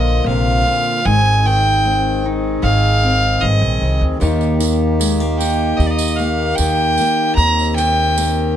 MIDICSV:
0, 0, Header, 1, 6, 480
1, 0, Start_track
1, 0, Key_signature, -3, "major"
1, 0, Tempo, 791557
1, 632, Time_signature, 4, 2, 24, 8
1, 5194, End_track
2, 0, Start_track
2, 0, Title_t, "Fiddle"
2, 0, Program_c, 0, 110
2, 0, Note_on_c, 0, 75, 81
2, 162, Note_off_c, 0, 75, 0
2, 168, Note_on_c, 0, 77, 99
2, 642, Note_on_c, 0, 80, 115
2, 651, Note_off_c, 0, 77, 0
2, 885, Note_on_c, 0, 79, 109
2, 895, Note_off_c, 0, 80, 0
2, 1359, Note_off_c, 0, 79, 0
2, 1591, Note_on_c, 0, 77, 109
2, 2067, Note_on_c, 0, 75, 94
2, 2076, Note_off_c, 0, 77, 0
2, 2429, Note_off_c, 0, 75, 0
2, 3267, Note_on_c, 0, 79, 78
2, 3499, Note_on_c, 0, 75, 78
2, 3508, Note_off_c, 0, 79, 0
2, 3556, Note_on_c, 0, 74, 70
2, 3565, Note_off_c, 0, 75, 0
2, 3584, Note_on_c, 0, 75, 80
2, 3593, Note_off_c, 0, 74, 0
2, 3736, Note_on_c, 0, 77, 80
2, 3745, Note_off_c, 0, 75, 0
2, 3975, Note_on_c, 0, 79, 108
2, 3984, Note_off_c, 0, 77, 0
2, 4453, Note_off_c, 0, 79, 0
2, 4457, Note_on_c, 0, 82, 117
2, 4687, Note_off_c, 0, 82, 0
2, 4702, Note_on_c, 0, 79, 110
2, 5163, Note_off_c, 0, 79, 0
2, 5194, End_track
3, 0, Start_track
3, 0, Title_t, "Harmonium"
3, 0, Program_c, 1, 20
3, 0, Note_on_c, 1, 50, 81
3, 0, Note_on_c, 1, 58, 79
3, 0, Note_on_c, 1, 65, 89
3, 607, Note_off_c, 1, 58, 0
3, 614, Note_off_c, 1, 65, 0
3, 616, Note_off_c, 1, 50, 0
3, 629, Note_on_c, 1, 51, 78
3, 633, Note_on_c, 1, 60, 74
3, 636, Note_on_c, 1, 68, 82
3, 2532, Note_off_c, 1, 60, 0
3, 2534, Note_off_c, 1, 68, 0
3, 2544, Note_on_c, 1, 58, 80
3, 2544, Note_on_c, 1, 67, 86
3, 4449, Note_off_c, 1, 58, 0
3, 4480, Note_on_c, 1, 60, 73
3, 5194, Note_off_c, 1, 51, 0
3, 5194, Note_off_c, 1, 60, 0
3, 5194, Note_off_c, 1, 67, 0
3, 5194, End_track
4, 0, Start_track
4, 0, Title_t, "Steel-string acoustic guitar"
4, 0, Program_c, 2, 25
4, 0, Note_on_c, 2, 46, 75
4, 0, Note_on_c, 2, 53, 68
4, 0, Note_on_c, 2, 58, 63
4, 0, Note_on_c, 2, 65, 67
4, 156, Note_off_c, 2, 46, 0
4, 161, Note_on_c, 2, 48, 69
4, 396, Note_off_c, 2, 48, 0
4, 406, Note_on_c, 2, 46, 59
4, 601, Note_off_c, 2, 53, 0
4, 607, Note_off_c, 2, 58, 0
4, 635, Note_off_c, 2, 65, 0
4, 637, Note_on_c, 2, 44, 80
4, 639, Note_off_c, 2, 46, 0
4, 880, Note_on_c, 2, 51, 68
4, 1122, Note_on_c, 2, 60, 63
4, 1367, Note_on_c, 2, 63, 54
4, 1609, Note_on_c, 2, 68, 64
4, 1833, Note_off_c, 2, 60, 0
4, 1840, Note_on_c, 2, 60, 52
4, 2072, Note_off_c, 2, 44, 0
4, 2075, Note_on_c, 2, 43, 62
4, 2313, Note_off_c, 2, 43, 0
4, 2318, Note_on_c, 2, 41, 59
4, 2527, Note_off_c, 2, 60, 0
4, 2531, Note_off_c, 2, 68, 0
4, 2544, Note_off_c, 2, 41, 0
4, 2546, Note_off_c, 2, 51, 0
4, 2547, Note_on_c, 2, 39, 78
4, 2553, Note_on_c, 2, 51, 68
4, 2557, Note_off_c, 2, 63, 0
4, 2557, Note_on_c, 2, 58, 60
4, 2559, Note_on_c, 2, 63, 58
4, 2564, Note_on_c, 2, 67, 69
4, 2789, Note_off_c, 2, 51, 0
4, 2792, Note_on_c, 2, 51, 60
4, 3027, Note_off_c, 2, 58, 0
4, 3030, Note_on_c, 2, 56, 58
4, 3154, Note_off_c, 2, 56, 0
4, 3154, Note_on_c, 2, 58, 54
4, 3273, Note_off_c, 2, 63, 0
4, 3276, Note_on_c, 2, 63, 54
4, 3514, Note_off_c, 2, 67, 0
4, 3517, Note_on_c, 2, 67, 62
4, 3748, Note_off_c, 2, 58, 0
4, 3755, Note_on_c, 2, 58, 59
4, 3988, Note_off_c, 2, 51, 0
4, 3995, Note_on_c, 2, 51, 61
4, 4242, Note_off_c, 2, 58, 0
4, 4245, Note_on_c, 2, 58, 58
4, 4445, Note_off_c, 2, 63, 0
4, 4446, Note_off_c, 2, 67, 0
4, 4469, Note_off_c, 2, 39, 0
4, 4483, Note_on_c, 2, 39, 69
4, 4709, Note_off_c, 2, 51, 0
4, 4716, Note_on_c, 2, 51, 60
4, 4957, Note_off_c, 2, 58, 0
4, 4960, Note_on_c, 2, 58, 66
4, 5194, Note_off_c, 2, 39, 0
4, 5194, Note_off_c, 2, 51, 0
4, 5194, Note_off_c, 2, 58, 0
4, 5194, End_track
5, 0, Start_track
5, 0, Title_t, "Upright bass"
5, 0, Program_c, 3, 32
5, 0, Note_on_c, 3, 34, 89
5, 126, Note_off_c, 3, 34, 0
5, 147, Note_on_c, 3, 34, 87
5, 377, Note_off_c, 3, 34, 0
5, 636, Note_on_c, 3, 32, 101
5, 1569, Note_off_c, 3, 32, 0
5, 1592, Note_on_c, 3, 32, 83
5, 2048, Note_off_c, 3, 32, 0
5, 2076, Note_on_c, 3, 32, 86
5, 2188, Note_off_c, 3, 32, 0
5, 2191, Note_on_c, 3, 34, 81
5, 2299, Note_off_c, 3, 34, 0
5, 2313, Note_on_c, 3, 36, 72
5, 2420, Note_off_c, 3, 36, 0
5, 2432, Note_on_c, 3, 38, 84
5, 2540, Note_off_c, 3, 38, 0
5, 2555, Note_on_c, 3, 39, 99
5, 3489, Note_off_c, 3, 39, 0
5, 3508, Note_on_c, 3, 39, 84
5, 3966, Note_off_c, 3, 39, 0
5, 3992, Note_on_c, 3, 39, 85
5, 4220, Note_off_c, 3, 39, 0
5, 4468, Note_on_c, 3, 39, 101
5, 5194, Note_off_c, 3, 39, 0
5, 5194, End_track
6, 0, Start_track
6, 0, Title_t, "Drums"
6, 2553, Note_on_c, 9, 54, 30
6, 2613, Note_off_c, 9, 54, 0
6, 2673, Note_on_c, 9, 54, 25
6, 2734, Note_off_c, 9, 54, 0
6, 2792, Note_on_c, 9, 54, 67
6, 2853, Note_off_c, 9, 54, 0
6, 3037, Note_on_c, 9, 54, 99
6, 3097, Note_off_c, 9, 54, 0
6, 3277, Note_on_c, 9, 54, 73
6, 3338, Note_off_c, 9, 54, 0
6, 3517, Note_on_c, 9, 54, 27
6, 3577, Note_off_c, 9, 54, 0
6, 3629, Note_on_c, 9, 54, 74
6, 3690, Note_off_c, 9, 54, 0
6, 3751, Note_on_c, 9, 54, 27
6, 3812, Note_off_c, 9, 54, 0
6, 3989, Note_on_c, 9, 54, 84
6, 4050, Note_off_c, 9, 54, 0
6, 4230, Note_on_c, 9, 54, 64
6, 4291, Note_off_c, 9, 54, 0
6, 4474, Note_on_c, 9, 54, 24
6, 4535, Note_off_c, 9, 54, 0
6, 4601, Note_on_c, 9, 54, 26
6, 4662, Note_off_c, 9, 54, 0
6, 4718, Note_on_c, 9, 54, 58
6, 4778, Note_off_c, 9, 54, 0
6, 4958, Note_on_c, 9, 54, 82
6, 5018, Note_off_c, 9, 54, 0
6, 5194, End_track
0, 0, End_of_file